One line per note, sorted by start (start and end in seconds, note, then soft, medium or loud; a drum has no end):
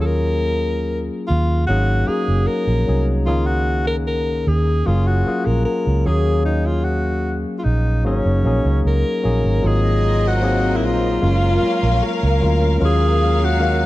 0.00 1.08 D#2 medium
0.00 1.01 F#3 medium
0.00 0.98 A#3 medium
0.00 0.98 C#4 medium
0.00 0.98 F4 medium
0.00 0.98 G#4 medium
0.00 0.08 A4 medium
0.06 1.00 A#4 loud
1.27 1.65 D#2 medium
1.27 1.65 F4 medium
1.67 2.03 G#1 medium
1.67 2.01 F#3 medium
1.67 2.01 A#3 medium
1.67 2.01 C#4 medium
1.67 2.01 D#4 medium
1.67 2.09 F#4 medium
1.67 2.02 G#4 medium
2.07 2.72 F#3 medium
2.07 2.72 A#3 medium
2.07 2.72 C#4 medium
2.07 2.72 D#4 medium
2.07 2.73 F#4 medium
2.07 2.49 G#4 medium
2.28 2.46 F#1 medium
2.47 3.08 A#4 medium
2.67 2.85 A#1 medium
2.87 3.28 C2 medium
2.87 3.20 F#3 medium
2.87 3.20 A#3 soft
2.87 3.20 C#4 medium
2.87 3.20 D#4 medium
2.87 3.21 G#4 medium
3.26 4.43 C#2 loud
3.26 4.55 D#3 medium
3.26 4.55 A#3 medium
3.26 4.55 C#4 medium
3.26 4.55 D#4 medium
3.26 3.48 F4 medium
3.26 4.55 G#4 medium
3.47 3.87 F#4 medium
3.87 3.96 A#4 medium
4.07 4.49 A#4 medium
4.47 4.82 D#2 medium
4.47 4.88 G#4 medium
4.86 5.22 F#1 loud
4.86 5.19 F#3 medium
4.86 5.19 A#3 medium
4.86 5.19 C#4 medium
4.86 5.09 F4 medium
4.86 5.20 F4 medium
4.86 5.20 G#4 medium
5.07 5.47 F#4 medium
5.26 5.90 F#3 medium
5.26 5.90 A#3 medium
5.26 5.91 C#4 medium
5.26 5.91 F4 medium
5.26 5.91 G#4 medium
5.46 5.64 A#1 medium
5.46 5.65 A#4 medium
5.65 6.08 A#4 medium
5.87 6.04 C#2 medium
6.06 7.44 D#2 medium
6.06 7.33 F#3 medium
6.06 7.34 A#3 medium
6.06 7.34 C#4 medium
6.06 6.45 G#4 medium
6.06 7.34 G#4 medium
6.06 7.34 F5 medium
6.45 6.68 D#4 medium
6.67 6.86 F4 medium
6.84 7.38 F#4 medium
7.59 7.66 F4 medium
7.64 8.05 A#1 medium
7.64 8.05 D#4 medium
8.04 8.23 G#1 medium
8.04 8.37 F#3 medium
8.04 8.37 A#3 medium
8.04 8.37 C#4 medium
8.04 8.81 C#4 medium
8.04 8.37 D#4 medium
8.04 8.38 G#4 medium
8.26 8.43 F#1 medium
8.44 8.62 A#1 medium
8.44 9.08 F#3 medium
8.44 9.09 A#3 medium
8.44 9.09 C#4 medium
8.44 9.09 D#4 medium
8.44 9.09 G#4 medium
8.65 8.82 C#2 medium
8.85 9.02 C#2 medium
8.85 9.68 A#4 medium
9.23 9.42 A#1 medium
9.23 9.56 F#3 medium
9.23 9.56 A#3 medium
9.23 9.56 C#4 medium
9.23 9.57 D#4 medium
9.23 9.57 G#4 medium
9.44 9.62 G#1 medium
9.63 10.84 G#1 loud
9.63 10.27 F#3 medium
9.63 10.27 A#3 medium
9.63 10.27 C4 medium
9.63 11.20 C4 medium
9.63 10.28 D#4 medium
9.63 10.28 F4 medium
9.63 11.20 A#4 medium
9.63 11.20 D#5 medium
9.67 10.29 G#4 medium
10.28 10.78 F#4 medium
10.42 11.21 F#3 medium
10.42 11.21 A#3 medium
10.42 11.23 C4 medium
10.42 11.23 D#4 medium
10.42 11.23 G#4 medium
10.76 10.87 E4 medium
10.84 11.18 A#1 medium
10.84 12.06 F4 loud
11.22 11.57 F#1 loud
11.22 12.18 F#3 medium
11.22 12.18 G#3 medium
11.22 12.18 A#3 medium
11.22 12.79 C#4 medium
11.22 12.18 C#4 medium
11.22 12.19 F4 medium
11.22 12.79 A#4 medium
11.22 12.78 F5 medium
11.63 muted fingered electric bass stroke soft
11.83 12.00 A#1 medium
12.04 12.83 A#4 medium
12.23 12.40 C#2 medium
12.40 12.77 D2 medium
12.40 12.73 F#3 medium
12.40 12.73 G#3 medium
12.40 12.73 A#3 medium
12.40 12.74 C#4 medium
12.40 12.74 F4 medium
12.80 13.86 D#2 medium
12.80 13.44 F#3 medium
12.80 13.44 G#3 medium
12.80 13.44 A#3 medium
12.80 13.86 C#4 medium
12.80 13.45 C#4 medium
12.80 13.45 F4 medium
12.80 13.86 A#4 medium
12.80 13.86 F5 medium
12.85 13.46 G#4 loud
13.45 13.86 F#4 medium
13.60 13.86 D#3 medium
13.60 13.86 G#3 medium
13.60 13.86 A#3 medium
13.60 13.86 C#4 medium
13.60 13.86 F5 medium